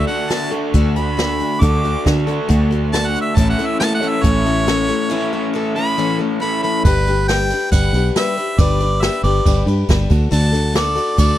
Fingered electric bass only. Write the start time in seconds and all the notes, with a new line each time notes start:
0.74 D2
1.62 D2
2.06 D3
2.50 D2
3.37 A1
4.24 A1
6.85 G1
7.72 G1
7.93 B1
8.58 G1
9.23 G1
9.46 G1
9.66 G2
9.89 G1
10.10 D2
10.32 D2
11.18 D2